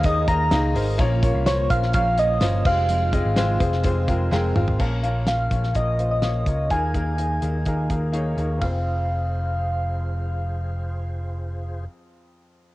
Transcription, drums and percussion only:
0.03 kick loud
0.03 closed hi-hat medium
0.28 kick medium
0.28 closed hi-hat medium
0.51 snare loud
0.51 closed hi-hat medium
0.76 open hi-hat medium
0.99 kick loud
0.99 closed hi-hat medium
1.23 kick medium
1.23 closed hi-hat medium
1.46 snare loud
1.46 closed hi-hat loud
1.70 kick loud
1.70 closed hi-hat medium
1.83 snare soft
1.93 kick medium
1.93 closed hi-hat medium
2.18 closed hi-hat medium
2.41 snare loud
2.41 closed hi-hat medium
2.65 kick loud
2.65 crash medium
2.89 closed hi-hat medium
3.13 kick loud
3.13 closed hi-hat medium
3.36 snare loud
3.36 closed hi-hat loud
3.60 kick medium
3.60 closed hi-hat medium
3.72 snare soft
3.84 kick loud
3.84 closed hi-hat medium
4.08 kick medium
4.08 closed hi-hat medium
4.32 snare medium
4.56 mid tom loud
4.68 floor tom loud
4.80 kick medium
4.80 crash medium
5.04 closed hi-hat medium
5.27 snare medium
5.27 closed hi-hat medium
5.51 kick medium
5.51 closed hi-hat medium
5.63 snare soft
5.75 kick medium
5.75 closed hi-hat medium
5.99 closed hi-hat medium
6.22 snare medium
6.22 closed hi-hat medium
6.46 kick medium
6.46 closed hi-hat medium
6.70 kick medium
6.70 closed hi-hat medium
6.94 kick medium
6.94 closed hi-hat soft
7.18 closed hi-hat medium
7.42 closed hi-hat medium
7.65 kick medium
7.65 closed hi-hat medium
7.90 kick medium
7.90 closed hi-hat medium
8.14 closed hi-hat medium
8.38 closed hi-hat medium
8.61 kick medium
8.61 ride medium

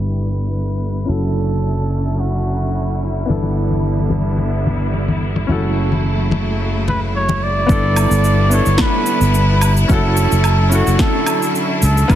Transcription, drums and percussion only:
3.30 high conga medium
3.43 muted conga medium
3.71 high conga medium
3.99 muted conga soft
4.10 high conga medium
4.38 muted conga medium
4.66 high conga medium
4.66 low conga medium
4.94 muted conga soft
5.08 high conga medium
5.36 muted conga medium
5.50 high conga medium
5.92 muted conga soft
5.92 high conga soft
6.31 muted conga medium
6.31 high conga medium
6.88 muted conga soft
6.88 high conga medium
6.88 low conga medium
7.29 muted conga medium
7.29 high conga medium
7.69 kick loud
7.69 cabasa soft
7.96 cabasa medium
7.96 low woodblock medium
8.11 cabasa soft
8.24 cabasa soft
8.52 cabasa medium
8.66 cabasa soft
8.78 kick loud
8.78 snare medium
8.78 cabasa soft
8.78 low woodblock medium
9.06 cabasa medium
9.21 cabasa soft
9.34 cabasa soft
9.61 cabasa medium
9.61 low woodblock medium
9.77 cabasa soft
9.89 kick loud
9.89 cabasa soft
10.17 cabasa medium
10.32 cabasa soft
10.44 cabasa soft
10.44 low woodblock medium
10.72 cabasa medium
10.87 cabasa soft
10.99 kick loud
10.99 snare medium
10.99 cabasa soft
11.26 cabasa medium
11.26 low woodblock medium
11.42 cabasa soft
11.55 cabasa soft
11.82 cabasa medium
11.97 cabasa soft
12.10 kick loud
12.10 cabasa soft
12.10 low woodblock medium

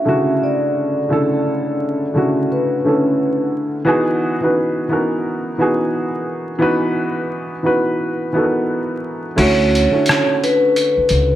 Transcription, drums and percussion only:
9.38 closed hi-hat medium
9.38 crash medium
9.75 closed hi-hat medium
10.06 cross-stick loud
10.06 closed hi-hat medium
10.44 closed hi-hat medium
10.76 closed hi-hat medium
11.09 closed hi-hat medium

